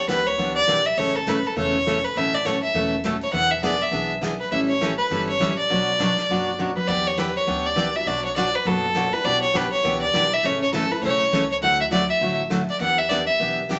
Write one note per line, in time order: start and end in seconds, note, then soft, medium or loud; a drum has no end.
0.08 0.33 D2 medium
0.08 0.19 E3 medium
0.08 0.20 B3 medium
0.08 0.20 D4 medium
0.08 0.20 G4 medium
0.08 0.28 B4 medium
0.08 snare medium
0.08 closed hi-hat soft
0.27 0.55 C#5 medium
0.27 open hi-hat soft
0.38 0.63 C#2 medium
0.38 0.58 E3 soft
0.38 0.58 B3 medium
0.38 0.58 D4 medium
0.38 0.59 G4 medium
0.38 open hi-hat soft
0.55 0.88 D5 loud
0.68 0.93 B1 medium
0.68 0.79 E3 medium
0.68 0.79 B3 medium
0.68 0.79 D4 medium
0.68 0.79 G4 medium
0.68 snare medium
0.68 closed hi-hat soft
0.85 0.99 E5 medium
0.85 open hi-hat soft
0.97 1.45 A1 medium
0.97 1.17 C#3 medium
0.97 1.17 E3 medium
0.97 1.18 A3 medium
0.97 1.18 C#4 medium
0.97 1.18 A4 medium
0.97 1.17 C#5 medium
0.97 open hi-hat soft
1.15 1.30 A4 medium
1.27 1.38 C#3 medium
1.27 1.38 E3 medium
1.27 1.38 A3 medium
1.27 1.38 C#4 medium
1.27 1.39 A4 medium
1.27 1.48 B4 medium
1.27 snare medium
1.27 closed hi-hat soft
1.44 1.57 A4 medium
1.44 open hi-hat soft
1.56 2.04 E1 medium
1.56 1.76 C#3 medium
1.56 1.76 E3 medium
1.56 1.76 A3 medium
1.56 1.76 C#4 medium
1.56 1.77 A4 medium
1.56 2.06 C#5 medium
1.56 open hi-hat soft
1.86 1.97 C#3 medium
1.86 1.97 E3 medium
1.86 1.97 A3 medium
1.86 1.97 C#4 medium
1.86 1.98 A4 medium
1.86 snare medium
1.86 closed hi-hat soft
2.04 2.18 B4 medium
2.04 open hi-hat soft
2.16 2.63 A1 medium
2.16 2.36 B2 medium
2.16 2.36 E3 soft
2.16 2.36 A3 medium
2.16 2.36 C#4 medium
2.16 2.36 A4 medium
2.16 2.36 E5 medium
2.16 open hi-hat soft
2.34 2.47 D5 medium
2.45 2.56 B2 medium
2.45 2.56 E3 medium
2.45 2.56 A3 medium
2.45 2.56 C#4 medium
2.45 2.57 A4 medium
2.45 2.62 C#5 medium
2.45 snare medium
2.45 closed hi-hat soft
2.63 2.90 E5 medium
2.63 open hi-hat soft
2.74 3.22 E1 medium
2.74 2.94 B2 medium
2.74 2.94 E3 medium
2.74 2.95 A3 medium
2.74 2.95 C#4 medium
2.74 2.95 A4 medium
2.74 open hi-hat soft
3.04 3.15 B2 medium
3.04 3.15 E3 medium
3.04 3.16 A3 medium
3.04 3.16 C#4 medium
3.04 3.16 A4 medium
3.04 snare medium
3.04 closed hi-hat soft
3.21 3.33 C#5 medium
3.21 open hi-hat soft
3.33 3.81 E1 medium
3.33 3.53 E3 medium
3.33 3.53 B3 medium
3.33 3.54 D4 medium
3.33 3.54 G#4 medium
3.33 3.52 F#5 loud
3.33 open hi-hat soft
3.51 3.63 E5 medium
3.63 3.74 E3 medium
3.63 3.74 B3 medium
3.63 3.74 D4 medium
3.63 3.75 G#4 medium
3.63 3.83 D5 medium
3.63 snare medium
3.63 closed hi-hat soft
3.81 4.11 E5 medium
3.81 open hi-hat soft
3.91 4.39 B1 medium
3.91 4.12 E3 medium
3.91 4.12 B3 medium
3.91 4.12 D4 medium
3.91 4.13 G#4 medium
3.91 open hi-hat soft
4.21 4.33 E3 medium
4.21 4.33 B3 medium
4.21 4.33 D4 medium
4.21 4.33 G#4 medium
4.21 snare medium
4.21 closed hi-hat soft
4.40 4.51 B4 medium
4.52 4.99 A1 medium
4.52 4.71 E3 medium
4.52 4.72 G3 medium
4.52 4.72 C#4 medium
4.52 4.72 E4 medium
4.52 4.72 A4 medium
4.52 4.60 E5 medium
4.52 open hi-hat soft
4.69 4.97 C#5 medium
4.81 4.92 E3 medium
4.81 4.92 G3 medium
4.81 4.92 C#4 medium
4.81 4.93 E4 medium
4.81 4.93 A4 medium
4.81 snare medium
4.81 closed hi-hat soft
4.98 5.26 B4 medium
4.98 open hi-hat soft
5.10 5.36 G1 medium
5.10 5.30 E3 medium
5.10 5.31 G3 medium
5.10 5.31 C#4 medium
5.10 5.31 E4 medium
5.10 5.31 A4 medium
5.10 open hi-hat soft
5.29 5.57 C#5 medium
5.40 5.66 A1 medium
5.40 5.51 E3 medium
5.40 5.51 G3 medium
5.40 5.52 C#4 medium
5.40 5.52 E4 medium
5.40 5.52 A4 medium
5.40 snare medium
5.40 closed hi-hat soft
5.59 6.55 D5 medium
5.70 6.18 B1 medium
5.70 5.89 B2 medium
5.70 5.90 F#3 medium
5.70 5.90 B3 medium
5.70 5.90 D4 medium
5.70 5.90 F#4 medium
5.70 5.90 C#5 medium
5.70 open hi-hat soft
5.99 6.10 B2 medium
5.99 6.10 F#3 medium
5.99 6.11 B3 medium
5.99 6.11 D4 medium
5.99 6.11 F#4 medium
5.99 6.11 C#5 medium
5.99 snare medium
5.99 closed hi-hat soft
6.17 snare soft
6.17 open hi-hat soft
6.29 6.77 F#1 medium
6.29 6.49 B2 medium
6.29 6.50 F#3 medium
6.29 6.50 B3 medium
6.29 6.50 D4 medium
6.29 6.50 F#4 medium
6.29 6.50 C#5 medium
6.29 open hi-hat soft
6.59 6.70 B2 medium
6.59 6.70 F#3 medium
6.59 6.70 B3 medium
6.59 6.70 D4 medium
6.59 6.70 F#4 medium
6.59 6.70 C#5 medium
6.76 6.89 B4 medium
6.76 high tom medium
6.88 7.36 E2 medium
6.88 7.08 E3 medium
6.88 7.08 B3 medium
6.88 7.08 D4 medium
6.88 7.09 G4 medium
6.88 7.08 D5 medium
6.88 kick medium
6.88 ride medium
7.07 7.20 C#5 medium
7.18 7.29 E3 medium
7.18 7.29 B3 medium
7.18 7.29 D4 medium
7.18 7.29 G4 medium
7.18 7.36 B4 medium
7.18 snare medium
7.18 closed hi-hat soft
7.36 7.67 C#5 medium
7.47 7.73 D2 medium
7.47 7.67 E3 soft
7.47 7.67 B3 medium
7.47 7.67 D4 medium
7.47 7.67 G4 medium
7.47 open hi-hat soft
7.66 7.97 D5 medium
7.76 8.02 C#2 medium
7.76 7.87 E3 medium
7.76 7.88 B3 medium
7.76 7.88 D4 medium
7.76 7.88 G4 medium
7.76 snare medium
7.76 closed hi-hat soft
7.94 8.34 F#3 medium
7.94 8.34 B3 medium
7.94 8.34 D4 medium
7.94 8.34 F#4 medium
7.94 8.08 E5 medium
7.94 open hi-hat soft
8.06 8.54 B1 medium
8.06 8.26 B2 medium
8.06 8.26 F#3 medium
8.06 8.26 B3 medium
8.06 8.27 D4 medium
8.06 8.27 F#4 medium
8.06 8.24 D5 medium
8.06 open hi-hat soft
8.25 8.36 C#5 medium
8.36 8.47 B2 medium
8.36 8.47 F#3 medium
8.36 8.47 B3 medium
8.36 8.48 D4 medium
8.36 8.48 F#4 medium
8.36 8.57 D5 medium
8.36 snare medium
8.36 closed hi-hat soft
8.53 8.68 B4 medium
8.53 open hi-hat soft
8.65 9.13 F#1 medium
8.65 8.86 B2 medium
8.65 8.86 F#3 medium
8.65 8.86 B3 medium
8.65 8.86 D4 medium
8.65 8.86 F#4 medium
8.65 9.14 A4 medium
8.65 open hi-hat soft
8.95 9.06 B2 medium
8.95 9.06 F#3 medium
8.95 9.07 B3 medium
8.95 9.07 D4 medium
8.95 9.07 F#4 medium
8.95 snare medium
8.95 closed hi-hat soft
9.12 9.52 G3 medium
9.12 9.52 B3 medium
9.12 9.53 D4 medium
9.12 9.52 E4 medium
9.12 9.26 B4 medium
9.12 open hi-hat soft
9.24 9.72 B1 medium
9.24 9.44 B2 medium
9.24 9.45 E3 medium
9.24 9.45 B3 medium
9.24 9.45 D4 medium
9.24 9.45 G4 medium
9.24 9.41 D5 loud
9.24 open hi-hat soft
9.42 9.58 C#5 medium
9.53 9.65 B2 medium
9.53 9.65 E3 medium
9.53 9.65 B3 medium
9.53 9.66 D4 medium
9.53 9.66 G4 medium
9.53 9.72 B4 medium
9.53 snare medium
9.53 closed hi-hat soft
9.72 10.00 C#5 medium
9.72 open hi-hat soft
9.83 10.10 C#2 medium
9.83 10.03 B2 medium
9.83 10.03 E3 medium
9.83 10.04 B3 medium
9.83 10.04 D4 medium
9.83 10.04 G4 medium
9.83 open hi-hat soft
10.02 10.35 D5 medium
10.13 10.39 B1 medium
10.13 10.25 B2 medium
10.13 10.25 E3 medium
10.13 10.44 G3 medium
10.13 10.43 B3 soft
10.13 10.25 B3 medium
10.13 10.44 D4 soft
10.13 10.25 D4 medium
10.13 10.44 E4 medium
10.13 10.25 G4 medium
10.13 snare medium
10.13 closed hi-hat soft
10.31 10.47 E5 loud
10.31 open hi-hat soft
10.43 10.91 A1 medium
10.43 10.63 C#3 medium
10.43 10.63 E3 medium
10.43 10.63 A3 medium
10.43 10.64 C#4 medium
10.43 10.64 A4 medium
10.43 10.61 C#5 medium
10.43 open hi-hat soft
10.62 10.73 C#5 medium
10.73 10.84 C#3 medium
10.73 10.84 E3 medium
10.73 10.84 A3 medium
10.73 10.84 C#4 medium
10.73 10.93 A4 medium
10.73 10.84 A4 medium
10.73 snare medium
10.73 closed hi-hat soft
10.90 11.30 E3 medium
10.90 11.30 A3 medium
10.90 11.30 C#4 medium
10.90 11.30 E4 medium
10.90 11.03 B4 medium
10.90 open hi-hat soft
11.02 11.27 B1 medium
11.02 11.22 C#3 medium
11.02 11.22 E3 soft
11.02 11.23 A3 medium
11.02 11.23 C#4 medium
11.02 11.23 A4 medium
11.02 11.47 C#5 medium
11.02 open hi-hat soft
11.32 11.58 C#2 medium
11.32 11.43 C#3 medium
11.32 11.43 E3 medium
11.32 11.43 A3 medium
11.32 11.44 C#4 medium
11.32 11.44 A4 medium
11.32 snare medium
11.32 closed hi-hat soft
11.52 11.57 C#5 medium
11.61 12.09 D2 medium
11.61 11.82 D3 medium
11.61 12.44 F#3 medium
11.61 11.82 F#3 medium
11.61 12.44 A3 medium
11.61 11.82 A3 medium
11.61 12.44 D4 soft
11.61 12.44 E4 medium
11.61 11.82 E4 medium
11.61 11.82 F#4 medium
11.61 11.79 F#5 medium
11.61 open hi-hat soft
11.81 11.86 E5 medium
11.91 12.02 D3 medium
11.91 12.02 F#3 medium
11.91 12.02 A3 medium
11.91 12.03 E4 medium
11.91 12.03 F#4 medium
11.91 12.08 D5 medium
11.91 snare medium
11.91 closed hi-hat soft
12.09 12.37 E5 medium
12.09 open hi-hat soft
12.21 12.68 A1 medium
12.21 12.41 D3 medium
12.21 12.41 F#3 medium
12.21 12.41 A3 medium
12.21 12.41 E4 medium
12.21 12.41 F#4 medium
12.21 open hi-hat soft
12.50 12.61 D3 medium
12.50 12.61 F#3 medium
12.50 12.61 A3 medium
12.50 12.62 E4 medium
12.50 12.62 F#4 medium
12.50 snare medium
12.50 closed hi-hat soft
12.69 12.80 D5 medium
12.69 open hi-hat soft
12.80 13.28 E2 medium
12.80 13.00 E3 medium
12.80 13.00 B3 medium
12.80 13.00 D4 medium
12.80 13.00 G4 medium
12.80 12.99 F#5 medium
12.80 open hi-hat soft
12.98 13.11 E5 medium
13.09 13.21 E3 medium
13.09 13.21 B3 medium
13.09 13.21 D4 medium
13.09 13.21 G4 medium
13.09 13.26 D5 medium
13.09 snare medium
13.09 closed hi-hat soft
13.27 13.54 E5 medium
13.27 open hi-hat soft
13.40 13.79 B1 medium
13.40 13.59 E3 medium
13.40 13.59 B3 medium
13.40 13.59 D4 medium
13.40 13.60 G4 medium
13.40 open hi-hat soft
13.69 13.79 E3 medium
13.69 13.79 B3 medium
13.69 13.79 D4 medium
13.69 13.79 G4 medium
13.69 snare medium
13.69 closed hi-hat soft